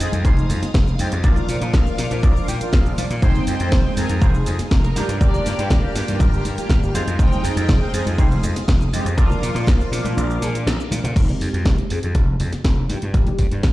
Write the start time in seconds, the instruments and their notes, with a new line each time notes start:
Already playing: string machine G#3 F5 D#6
0.00 slap bass F2, analog polysynth G#3 C4 D#4 G#4, open hi-hat, muted conga, shaker
0.12 slap bass F2, closed hi-hat, high conga, shaker
0.25 slap bass F1, analog polysynth G#3 C4 D#4 G4, clean electric guitar D#4 F4 G#4 C5, kick, closed hi-hat, shaker
0.37 muted conga, shaker
0.50 slap bass F2, open hi-hat, high conga, low conga, shaker
0.62 muted slap bass stroke, snare, closed hi-hat, shaker
0.74 slap bass F1, kick, snare, closed hi-hat, shaker
0.87 muted conga, shaker
0.99 slap bass F2, analog polysynth G#3 C4 D#4 G4, open hi-hat, high conga, shaker
1.12 slap bass F2, muted clean electric guitar stroke, closed hi-hat, shaker
1.24 slap bass A#1, analog polysynth F3 A#3 D4 F4, clean electric guitar D4 F4 A#4 D5, string machine A#4 D6, kick, closed hi-hat, muted conga, shaker
1.36 high conga, low conga, shaker
1.49 slap bass A#2, open hi-hat, shaker
1.61 slap bass A#2, muted clean electric guitar stroke, closed hi-hat, shaker
1.73 slap bass A#1, muted clean electric guitar stroke, kick, snare, closed hi-hat, muted conga, high conga, shaker
1.86 muted clean electric guitar stroke, shaker
1.98 slap bass A#2, analog polysynth F3 A#3 D4 F4, snare, open hi-hat, shaker
2.11 slap bass A#2, closed hi-hat, muted conga, high conga, shaker
2.23 slap bass A#1, clean electric guitar D4 F4 A#4 D5, kick, closed hi-hat, shaker
2.36 analog polysynth F3 A#3 D4 F4, shaker
2.48 slap bass A#2, clean electric guitar G5, open hi-hat, high conga, shaker
2.60 analog polysynth F3 A#3 D4 F4, muted slap bass stroke, closed hi-hat, muted conga, shaker
2.73 slap bass A#1, clean electric guitar F5, kick, snare, closed hi-hat, shaker
2.86 shaker
2.97 slap bass A#2, analog polysynth F3 A#3 D4 F4, clean electric guitar D5, open hi-hat, muted conga, high conga, shaker
3.10 slap bass A#2, muted clean electric guitar stroke, closed hi-hat, shaker
3.22 slap bass F1, analog polysynth G#3 C4 D#4 G5, string machine G#3 D#6, clean electric guitar D#4 F4 G#4 C5, violin section C5, kick, closed hi-hat, shaker
3.35 high conga, low conga, shaker
3.47 slap bass F2, violin section C5, open hi-hat, shaker
3.60 slap bass F2, muted clean electric guitar stroke, closed hi-hat, muted conga, shaker
3.72 slap bass F1, muted clean electric guitar stroke, kick, snare, closed hi-hat, high conga, shaker
3.85 muted clean electric guitar stroke
3.97 slap bass F2, analog polysynth G#3 C4 D#4 G#4, violin section A#4, open hi-hat, muted conga, shaker
4.09 slap bass F2, closed hi-hat, high conga, shaker
4.21 slap bass F1, analog polysynth G#3 C4 D#4 G4, clean electric guitar D#4 F4 G#4 C5, violin section G#4, kick, closed hi-hat, shaker
4.34 shaker
4.46 slap bass F2, open hi-hat, muted conga, high conga, low conga, shaker
4.59 muted slap bass stroke, snare, closed hi-hat, shaker
4.71 slap bass F1, violin section A#4, kick, snare, closed hi-hat, shaker
4.84 muted conga, shaker
4.96 slap bass G2, analog polysynth A#3 D4 F4 G4, clean electric guitar D4 F4 G4 A#4, string machine A#4 G5 F6, open hi-hat, high conga, shaker
5.08 slap bass G2, closed hi-hat, shaker
5.20 slap bass G1, analog polysynth A#3 D4 F4 G4, violin section D5, kick, closed hi-hat, shaker
5.34 muted conga, high conga, low conga, shaker
5.46 slap bass G2, open hi-hat, shaker
5.58 slap bass G2, muted clean electric guitar stroke, closed hi-hat, shaker
5.70 slap bass G1, muted clean electric guitar stroke, kick, snare, closed hi-hat, muted conga, high conga, shaker
5.83 muted clean electric guitar stroke
5.95 slap bass G2, analog polysynth A#3 D4 F4 G4, snare, open hi-hat, shaker
6.08 slap bass G2, closed hi-hat, high conga, shaker
6.20 slap bass G1, clean electric guitar D4 F4 G4 A#4, kick, closed hi-hat, muted conga, shaker
6.33 analog polysynth A#3 D4 F4 G4, shaker
6.45 slap bass G2, open hi-hat, high conga, shaker
6.57 analog polysynth A#3 D4 F4 G4, muted slap bass stroke, closed hi-hat, muted conga, shaker
6.69 slap bass G1, kick, snare, closed hi-hat, shaker
6.83 shaker
6.94 slap bass F2, analog polysynth G#3 C4 D#4 F4, string machine G#3 F5 D#6, clean electric guitar D#4 F4 G#4 C5, open hi-hat, high conga, shaker
7.07 slap bass F2, closed hi-hat, muted conga, shaker
7.19 slap bass F1, analog polysynth G#3 C4 D#4 G5, kick, closed hi-hat, shaker
7.32 high conga, low conga, shaker
7.44 slap bass F2, open hi-hat, muted conga, shaker
7.56 slap bass F2, muted clean electric guitar stroke, closed hi-hat, shaker
7.68 slap bass F1, muted clean electric guitar stroke, kick, snare, closed hi-hat, high conga, shaker
7.81 muted clean electric guitar stroke
7.93 slap bass F2, analog polysynth G#3 C4 D#4 G#4, open hi-hat, muted conga, shaker
8.06 slap bass F2, closed hi-hat, high conga, shaker
8.18 slap bass F1, analog polysynth G#3 C4 D#4 G4, clean electric guitar D#4 F4 G#4 C5, kick, closed hi-hat, shaker
8.32 muted conga, shaker
8.43 slap bass F2, open hi-hat, high conga, low conga, shaker
8.55 muted slap bass stroke, snare, closed hi-hat, shaker
8.68 slap bass F1, kick, snare, closed hi-hat, shaker
8.81 muted conga, shaker
8.93 slap bass F2, analog polysynth G#3 C4 D#4 G4, open hi-hat, high conga, shaker
9.05 slap bass F2, muted clean electric guitar stroke, closed hi-hat, shaker
9.16 slap bass A#1, analog polysynth F3 A#3 D4 F4, clean electric guitar D4 F4 A#4 D5, string machine A#4 F5 D6, kick, closed hi-hat, muted conga, shaker
9.30 high conga, low conga, shaker
9.42 slap bass A#2, open hi-hat, shaker
9.55 slap bass A#2, muted clean electric guitar stroke, closed hi-hat, shaker
9.67 slap bass A#1, muted clean electric guitar stroke, kick, snare, closed hi-hat, muted conga, high conga, shaker
9.80 muted clean electric guitar stroke, shaker
9.91 slap bass A#2, analog polysynth F3 A#3 D4 F4, snare, open hi-hat, shaker
10.04 slap bass A#2, closed hi-hat, muted conga, high conga, shaker
10.17 slap bass A#1, clean electric guitar D4 F4 A#4 D5, closed hi-hat, shaker
10.29 analog polysynth F3 A#3 D4 F4, shaker
10.41 slap bass A#2, analog polysynth F3 A#3 D4 G#4, open hi-hat, high conga, shaker
10.55 closed hi-hat, muted conga, shaker
10.66 slap bass A#1, snare, closed hi-hat, shaker
10.80 shaker
10.91 slap bass A#2, open hi-hat, muted conga, high conga, shaker
11.04 slap bass A#2, muted clean electric guitar stroke, closed hi-hat, low conga, shaker
11.15 slap bass F1, analog polysynth G#3 C4 D#4 G4, kick, closed hi-hat, crash
11.29 closed hi-hat, high conga, low conga
11.41 slap bass F2, open hi-hat
11.54 slap bass F2, closed hi-hat
11.65 slap bass F1, kick, snare, closed hi-hat, high conga
11.78 closed hi-hat
11.89 slap bass F2, analog polysynth G#3 C4 D#4 G#4, open hi-hat
12.03 slap bass F2, closed hi-hat, high conga
12.14 slap bass F1, analog polysynth G#3 C4 D#4 G4, kick, closed hi-hat
12.40 slap bass F2, open hi-hat, high conga, low conga
12.53 muted slap bass stroke, snare, closed hi-hat
12.64 slap bass F1, kick, snare, closed hi-hat
12.88 slap bass G2, analog polysynth A#3 D4 F4 G4, open hi-hat, high conga
13.02 slap bass G2, closed hi-hat
13.13 slap bass G1, analog polysynth A#3 D4 F4 G4, kick, closed hi-hat
13.27 closed hi-hat, high conga, low conga
13.39 slap bass G2, kick, open hi-hat
13.51 slap bass G2, closed hi-hat
13.63 slap bass G1, kick, snare, closed hi-hat, high conga